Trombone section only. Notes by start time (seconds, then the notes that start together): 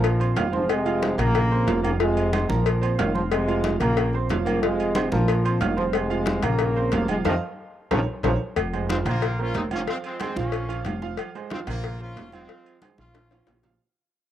Already playing: A#2 F3
0.37 A#2 D#3
0.54 G#2 F3
0.70 C3 G#3
1.18 C#3 A#3
1.83 C#3 A#3
2.00 C3 G#3
2.50 A#2 F3
2.98 A#2 D#3
3.16 G#2 F3
3.31 C3 G#3
3.80 C#3 A#3
4.45 C#3 A#3
4.63 C3 G#3
5.12 A#2 F3
5.62 A#2 D#3
5.78 G#2 F3
5.95 C3 G#3
6.44 C#3 A#3
7.09 C3 G#3
7.26 C3 D#3 F3
7.91 C3 C#3 F3
8.24 C3 C#3 F3